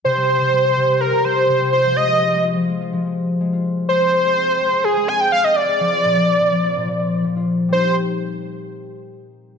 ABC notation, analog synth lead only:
X:1
M:4/4
L:1/16
Q:1/4=125
K:Cm
V:1 name="Analog synth lead"
c8 B2 c4 c2 | e4 z12 | c8 A2 a g f e d2- | d12 z4 |
c2 z12 z2 |]